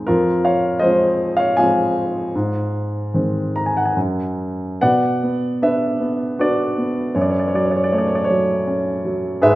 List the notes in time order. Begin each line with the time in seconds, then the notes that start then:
0.07 F2 F4 A#4
0.45 C#5 F5
0.79 F3 G#3 C5 D#5
0.83 C4
1.37 C#5 F5
1.57 F3 G#3 C4 F5 G#5
2.35 G#2
3.14 D#3 G#3 C4
3.56 A#5
3.66 G#5
3.77 F#5
3.85 G#5
3.97 F#2
4.81 B2 B4 D5 F#5
5.23 B3
5.62 D4 B4 E5
6.00 B3
6.39 D4 F#4 B4 D5
6.78 B3
7.15 F#2 C#5
7.21 D5
7.30 C#5
7.39 D5
7.48 C#5
7.54 F#3 D5
7.65 C#5
7.71 D5
7.76 C#5
7.84 D5
7.92 A3 C#5
7.98 D5
8.07 C#5
8.15 D5
8.24 C#5
8.30 F#3
8.67 C#4
9.05 F#3
9.42 G#2 G#4 B4 E5